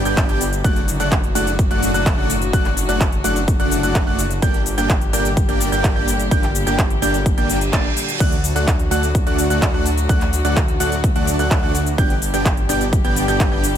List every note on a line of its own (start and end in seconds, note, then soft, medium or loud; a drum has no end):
0.00 0.61 B2 medium
0.00 4.38 D3 medium
0.00 0.61 G3 medium
0.00 8.16 D4 medium
0.00 0.61 G4 medium
0.05 0.27 G1 loud
0.05 0.26 B3 medium
0.05 0.26 D4 medium
0.05 0.26 G4 medium
0.05 0.26 D5 medium
0.05 0.26 G5 medium
0.05 0.26 G6 medium
0.05 closed hi-hat medium
0.05 shaker soft
0.17 kick loud
0.17 clap loud
0.17 closed hi-hat medium
0.17 shaker soft
0.29 0.62 G1 loud
0.29 0.44 B3 medium
0.29 0.44 D4 medium
0.29 0.44 G4 medium
0.29 0.44 D5 medium
0.29 0.44 G5 medium
0.29 0.44 G6 medium
0.29 closed hi-hat soft
0.41 open hi-hat loud
0.41 shaker medium
0.53 closed hi-hat soft
0.53 shaker soft
0.64 0.98 F#1 loud
0.64 4.39 A2 medium
0.64 4.39 F#3 medium
0.64 0.80 A3 loud
0.64 0.80 D4 medium
0.64 4.39 F#4 medium
0.64 0.80 F#4 medium
0.64 0.80 D5 medium
0.64 0.80 F#5 loud
0.64 0.80 F#6 loud
0.64 kick loud
0.64 closed hi-hat medium
0.64 shaker soft
0.76 closed hi-hat soft
0.88 open hi-hat loud
0.88 shaker medium
1.00 1.33 F#1 medium
1.00 1.15 A3 medium
1.00 1.15 D4 medium
1.00 1.15 F#4 medium
1.00 1.15 D5 medium
1.00 1.15 F#5 medium
1.00 1.15 F#6 medium
1.00 closed hi-hat soft
1.00 shaker soft
1.12 kick loud
1.12 clap loud
1.12 closed hi-hat medium
1.12 shaker soft
1.24 closed hi-hat soft
1.35 1.68 F#1 medium
1.35 1.50 A3 medium
1.35 1.50 D4 medium
1.35 1.50 F#4 medium
1.35 1.50 D5 medium
1.35 1.50 F#5 medium
1.35 1.50 F#6 medium
1.35 open hi-hat loud
1.35 shaker medium
1.47 closed hi-hat medium
1.47 shaker soft
1.59 kick loud
1.59 closed hi-hat medium
1.59 shaker soft
1.71 1.92 F#1 medium
1.71 1.92 A3 medium
1.71 1.92 D4 medium
1.71 1.92 F#4 medium
1.71 1.92 D5 medium
1.71 1.92 F#5 medium
1.71 1.92 F#6 medium
1.71 closed hi-hat soft
1.83 open hi-hat loud
1.83 shaker medium
1.94 2.16 F#1 loud
1.94 2.15 A3 medium
1.94 2.15 D4 medium
1.94 2.15 F#4 medium
1.94 2.15 D5 medium
1.94 2.15 F#5 loud
1.94 2.15 F#6 medium
1.94 closed hi-hat medium
1.94 shaker soft
2.06 kick loud
2.06 clap loud
2.06 closed hi-hat medium
2.06 shaker soft
2.18 2.51 F#1 loud
2.18 2.33 A3 medium
2.18 2.33 D4 medium
2.18 2.33 F#4 medium
2.18 2.33 D5 medium
2.18 2.33 F#5 medium
2.18 2.33 F#6 medium
2.30 open hi-hat loud
2.30 shaker medium
2.42 closed hi-hat medium
2.42 shaker soft
2.53 2.86 F#1 loud
2.53 2.69 A3 loud
2.53 2.69 D4 medium
2.53 2.69 F#4 medium
2.53 2.69 D5 medium
2.53 2.69 F#5 loud
2.53 2.69 F#6 loud
2.53 kick loud
2.53 closed hi-hat medium
2.53 shaker soft
2.65 clap soft
2.65 closed hi-hat soft
2.77 open hi-hat loud
2.77 shaker medium
2.89 3.22 F#1 medium
2.89 3.04 A3 medium
2.89 3.04 D4 medium
2.89 3.04 F#4 medium
2.89 3.04 D5 medium
2.89 3.04 F#5 medium
2.89 3.04 F#6 medium
2.89 closed hi-hat medium
2.89 shaker soft
3.01 kick loud
3.01 clap loud
3.01 closed hi-hat medium
3.01 shaker soft
3.12 closed hi-hat soft
3.24 3.57 F#1 loud
3.24 3.39 A3 medium
3.24 3.39 D4 medium
3.24 3.39 F#4 medium
3.24 3.39 D5 medium
3.24 3.39 F#5 medium
3.24 3.39 F#6 medium
3.24 open hi-hat loud
3.24 shaker medium
3.36 closed hi-hat medium
3.36 shaker soft
3.48 kick loud
3.48 closed hi-hat medium
3.48 shaker soft
3.60 3.81 F#1 loud
3.60 3.81 A3 medium
3.60 3.80 D4 medium
3.60 3.80 F#4 medium
3.60 3.80 D5 medium
3.60 3.80 F#5 medium
3.60 3.80 F#6 medium
3.60 closed hi-hat soft
3.71 open hi-hat loud
3.71 shaker medium
3.83 4.05 F#1 loud
3.83 4.04 A3 medium
3.83 4.04 D4 medium
3.83 4.04 F#4 medium
3.83 4.04 D5 medium
3.83 4.04 F#5 medium
3.83 4.04 F#6 medium
3.83 closed hi-hat medium
3.83 shaker soft
3.95 kick loud
3.95 clap loud
3.95 closed hi-hat medium
3.95 shaker soft
4.07 4.40 F#1 loud
4.07 4.22 A3 medium
4.07 4.22 D4 medium
4.07 4.22 F#4 medium
4.07 4.22 D5 medium
4.07 4.22 F#5 medium
4.07 4.22 F#6 medium
4.19 open hi-hat loud
4.19 shaker medium
4.31 closed hi-hat medium
4.31 shaker soft
4.42 4.75 G1 loud
4.42 8.17 A#2 medium
4.42 13.78 D3 medium
4.42 8.17 G3 medium
4.42 4.58 A#3 loud
4.42 4.58 D4 medium
4.42 4.58 G4 medium
4.42 8.17 G4 medium
4.42 4.58 D5 medium
4.42 4.58 G5 loud
4.42 4.57 G6 loud
4.42 kick loud
4.42 closed hi-hat medium
4.42 shaker soft
4.54 closed hi-hat soft
4.66 open hi-hat loud
4.66 shaker medium
4.78 5.11 G1 medium
4.78 4.93 A#3 medium
4.78 4.93 D4 medium
4.78 4.93 G4 medium
4.78 4.93 D5 medium
4.78 4.93 G5 medium
4.78 4.93 G6 medium
4.78 closed hi-hat medium
4.78 shaker soft
4.90 kick loud
4.90 clap loud
4.90 closed hi-hat medium
4.90 shaker soft
5.01 closed hi-hat soft
5.13 5.46 G1 loud
5.13 5.28 A#3 medium
5.13 5.28 D4 medium
5.13 5.28 G4 medium
5.13 5.28 D5 medium
5.13 5.28 G5 medium
5.13 5.28 G6 medium
5.13 open hi-hat loud
5.13 shaker medium
5.25 closed hi-hat medium
5.25 shaker soft
5.37 kick loud
5.37 closed hi-hat medium
5.37 shaker soft
5.49 5.70 G1 medium
5.49 5.70 A#3 medium
5.49 5.70 D4 medium
5.49 5.70 G4 medium
5.49 5.70 D5 medium
5.49 5.70 G5 medium
5.49 5.69 G6 medium
5.49 closed hi-hat soft
5.61 open hi-hat loud
5.61 shaker medium
5.72 5.94 G1 loud
5.72 5.93 A#3 medium
5.72 5.93 D4 medium
5.72 5.93 G4 medium
5.72 5.93 D5 medium
5.72 5.93 G5 medium
5.72 5.93 G6 medium
5.72 closed hi-hat medium
5.72 shaker soft
5.84 kick loud
5.84 clap loud
5.84 closed hi-hat medium
5.84 shaker soft
5.96 6.29 G1 loud
5.96 6.11 A#3 medium
5.96 6.11 D4 medium
5.96 6.11 G4 medium
5.96 6.11 D5 medium
5.96 6.11 G5 medium
5.96 6.11 G6 medium
6.08 open hi-hat loud
6.08 shaker medium
6.20 closed hi-hat medium
6.20 shaker soft
6.31 6.64 G1 loud
6.31 6.47 A#3 loud
6.31 6.47 D4 medium
6.31 6.47 G4 medium
6.31 6.47 D5 medium
6.31 6.47 G5 loud
6.31 6.46 G6 loud
6.31 kick loud
6.31 closed hi-hat medium
6.31 shaker soft
6.43 clap soft
6.43 closed hi-hat soft
6.55 open hi-hat loud
6.55 shaker medium
6.67 7.00 G1 loud
6.67 6.82 A#3 medium
6.67 6.82 D4 medium
6.67 6.82 G4 medium
6.67 6.82 D5 medium
6.67 6.82 G5 medium
6.67 6.82 G6 medium
6.67 closed hi-hat medium
6.67 shaker soft
6.79 kick loud
6.79 clap loud
6.79 closed hi-hat medium
6.79 shaker soft
6.90 closed hi-hat soft
7.02 7.35 G1 loud
7.02 7.17 A#3 medium
7.02 7.17 D4 medium
7.02 7.17 G4 medium
7.02 7.17 D5 medium
7.02 7.17 G5 medium
7.02 7.17 G6 medium
7.02 open hi-hat loud
7.02 shaker medium
7.14 closed hi-hat medium
7.14 shaker soft
7.26 kick loud
7.26 closed hi-hat medium
7.26 reverse cymbal medium
7.26 shaker soft
7.38 7.71 G1 medium
7.38 7.58 A#3 medium
7.38 7.58 D4 medium
7.38 7.58 G4 medium
7.38 7.58 D5 medium
7.38 7.58 G5 medium
7.38 7.58 G6 medium
7.38 closed hi-hat soft
7.49 open hi-hat loud
7.49 shaker medium
7.61 closed hi-hat medium
7.61 shaker soft
7.73 7.86 G1 loud
7.73 7.88 A#3 medium
7.73 7.88 D4 medium
7.73 7.88 G4 medium
7.73 7.88 D5 medium
7.73 7.88 A5 loud
7.73 7.88 A6 loud
7.73 kick loud
7.73 clap loud
7.73 closed hi-hat medium
7.73 shaker soft
7.97 open hi-hat loud
7.97 shaker medium
8.09 closed hi-hat medium
8.09 shaker soft
8.20 8.53 D2 loud
8.20 11.95 A2 medium
8.20 11.95 F#3 medium
8.20 8.36 A3 loud
8.20 8.36 D4 medium
8.20 13.78 D4 medium
8.20 8.36 F#4 medium
8.20 11.95 F#4 medium
8.20 8.36 D5 medium
8.20 8.36 F#5 loud
8.20 8.35 F#6 loud
8.20 kick loud
8.20 closed hi-hat medium
8.20 crash medium
8.20 shaker soft
8.32 closed hi-hat soft
8.44 open hi-hat loud
8.44 shaker medium
8.56 8.89 D2 medium
8.56 8.71 A3 medium
8.56 8.71 D4 medium
8.56 8.71 F#4 medium
8.56 8.71 D5 medium
8.56 8.71 F#5 medium
8.56 8.71 F#6 medium
8.56 closed hi-hat medium
8.56 shaker soft
8.68 kick loud
8.68 clap loud
8.68 closed hi-hat medium
8.68 shaker soft
8.79 closed hi-hat soft
8.91 9.24 D2 loud
8.91 9.06 A3 medium
8.91 9.06 D4 medium
8.91 9.06 F#4 medium
8.91 9.06 D5 medium
8.91 9.06 F#5 medium
8.91 9.06 F#6 medium
8.91 open hi-hat loud
8.91 shaker medium
9.03 closed hi-hat medium
9.03 shaker soft
9.15 kick loud
9.15 closed hi-hat medium
9.15 shaker soft
9.27 9.48 D2 medium
9.27 9.47 A3 medium
9.27 9.47 D4 medium
9.27 9.47 F#4 medium
9.27 9.47 D5 medium
9.27 9.47 F#5 medium
9.27 9.47 F#6 medium
9.27 closed hi-hat soft
9.39 open hi-hat loud
9.39 shaker medium
9.50 9.72 D2 loud
9.50 9.71 A3 medium
9.50 9.71 D4 medium
9.50 9.71 F#4 medium
9.50 9.71 D5 medium
9.50 9.71 F#5 medium
9.50 9.71 F#6 medium
9.50 closed hi-hat medium
9.50 shaker soft
9.62 kick loud
9.62 clap loud
9.62 closed hi-hat medium
9.62 shaker soft
9.74 10.07 D2 loud
9.74 9.89 A3 medium
9.74 9.89 D4 medium
9.74 9.89 F#4 medium
9.74 9.89 D5 medium
9.74 9.89 F#5 medium
9.74 9.89 F#6 medium
9.86 open hi-hat loud
9.86 shaker medium
9.98 closed hi-hat medium
9.98 shaker soft
10.09 10.42 D2 loud
10.09 10.24 A3 loud
10.09 10.24 D4 medium
10.09 10.24 F#4 medium
10.09 10.24 D5 medium
10.09 10.24 F#5 loud
10.09 10.24 F#6 loud
10.09 kick loud
10.09 closed hi-hat medium
10.09 shaker soft
10.21 clap soft
10.21 closed hi-hat soft
10.33 open hi-hat loud
10.33 shaker medium
10.45 10.78 D2 medium
10.45 10.60 A3 medium
10.45 10.60 D4 medium
10.45 10.60 F#4 medium
10.45 10.60 D5 medium
10.45 10.60 F#5 medium
10.45 10.60 F#6 medium
10.45 closed hi-hat medium
10.45 shaker soft
10.57 kick loud
10.57 clap loud
10.57 closed hi-hat medium
10.57 shaker soft
10.68 closed hi-hat soft
10.80 11.13 D2 loud
10.80 10.95 A3 medium
10.80 10.95 D4 medium
10.80 10.95 F#4 medium
10.80 10.95 D5 medium
10.80 10.95 F#5 medium
10.80 10.95 F#6 medium
10.80 open hi-hat loud
10.80 shaker medium
10.92 closed hi-hat medium
10.92 shaker soft
11.04 kick loud
11.04 closed hi-hat medium
11.04 shaker soft
11.16 11.37 D2 medium
11.16 11.36 A3 medium
11.16 11.36 D4 medium
11.16 11.36 F#4 medium
11.16 11.36 D5 medium
11.16 11.36 F#5 medium
11.16 11.36 F#6 medium
11.16 closed hi-hat soft
11.27 open hi-hat loud
11.27 shaker medium
11.39 11.60 D2 loud
11.39 11.60 A3 medium
11.39 11.60 D4 medium
11.39 11.60 F#4 medium
11.39 11.60 D5 medium
11.39 11.60 F#5 medium
11.39 11.60 F#6 medium
11.39 closed hi-hat medium
11.39 shaker soft
11.51 kick loud
11.51 clap loud
11.51 closed hi-hat medium
11.51 shaker soft
11.63 11.96 D2 loud
11.63 11.78 A3 medium
11.63 11.78 D4 medium
11.63 11.78 F#4 medium
11.63 11.78 D5 medium
11.63 11.78 F#5 medium
11.63 11.78 F#6 medium
11.75 open hi-hat loud
11.75 shaker medium
11.86 closed hi-hat medium
11.86 shaker soft
11.98 12.31 G1 loud
11.98 13.78 B2 medium
11.98 13.78 G3 medium
11.98 12.13 B3 loud
11.98 12.13 D4 medium
11.98 13.78 G4 medium
11.98 12.13 G4 medium
11.98 12.13 D5 medium
11.98 12.13 G5 loud
11.98 12.13 G6 loud
11.98 kick loud
11.98 closed hi-hat medium
11.98 shaker soft
12.10 closed hi-hat soft
12.22 open hi-hat loud
12.22 shaker medium
12.34 12.67 G1 loud
12.34 12.49 B3 medium
12.34 12.49 D4 medium
12.34 12.49 G4 medium
12.34 12.49 D5 medium
12.34 12.49 G5 medium
12.34 12.49 G6 medium
12.34 closed hi-hat medium
12.34 shaker soft
12.46 kick loud
12.46 clap loud
12.46 closed hi-hat medium
12.46 shaker soft
12.57 closed hi-hat soft
12.69 13.02 G1 loud
12.69 12.84 B3 medium
12.69 12.84 D4 medium
12.69 12.84 G4 medium
12.69 12.84 D5 medium
12.69 12.84 G5 medium
12.69 12.84 G6 medium
12.69 open hi-hat loud
12.69 shaker medium
12.81 closed hi-hat medium
12.81 shaker soft
12.93 kick loud
12.93 closed hi-hat medium
12.93 shaker soft
13.04 13.26 G1 medium
13.04 13.25 B3 medium
13.04 13.25 D4 medium
13.04 13.25 G4 medium
13.04 13.25 D5 medium
13.04 13.25 G5 medium
13.04 13.25 G6 medium
13.04 closed hi-hat soft
13.16 open hi-hat loud
13.16 shaker medium
13.28 13.50 G1 loud
13.28 13.49 B3 medium
13.28 13.49 D4 medium
13.28 13.49 G4 medium
13.28 13.49 D5 medium
13.28 13.49 G5 medium
13.28 13.49 G6 loud
13.28 closed hi-hat medium
13.28 shaker soft
13.40 kick loud
13.40 clap loud
13.40 closed hi-hat medium
13.40 shaker soft
13.52 13.78 G1 loud
13.52 13.67 B3 medium
13.52 13.67 D4 medium
13.52 13.67 G4 medium
13.52 13.67 D5 medium
13.52 13.67 G5 medium
13.52 13.67 G6 medium
13.64 open hi-hat loud
13.64 shaker medium